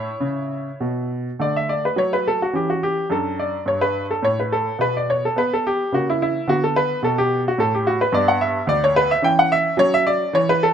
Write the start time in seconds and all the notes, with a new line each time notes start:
Already playing: E4 C#5
0.20 C#3
0.80 B2
1.39 D3 A3 D5
1.56 E5
1.69 D5
1.85 B4
1.96 F#3 C#5
2.13 B4
2.28 A4
2.42 F#4
2.53 E3 C#4 G4
2.70 F#4
2.83 G4
3.10 F#2 D4 A4
3.39 D5
3.66 G2 C#5
3.81 B4
4.11 A4
4.22 A2 C#5
4.40 B4
4.52 A4
4.79 B2 B3 B4
4.97 D5
5.10 C#5
5.25 A4
5.36 B3 B4
5.53 A4
5.67 G4
5.92 C#3 A#3 F#4
6.10 E4
6.22 E4
6.47 D3 B3 F#4
6.64 A4
6.76 B4
7.03 B2 A4
7.18 G4
7.48 F#4
7.58 A2 A4
7.75 G4
7.87 F#4
8.01 B4
8.12 G2 B3 D5
8.28 F#5
8.41 E5
8.67 D2 D5
8.84 C#5
8.96 B4
9.11 E5
9.22 E3 C#4 G5
9.39 F#5
9.52 E5
9.77 F#3 C#4 C#5
9.94 E5
10.07 D5
10.33 E3 C#5
10.49 B4
10.63 A4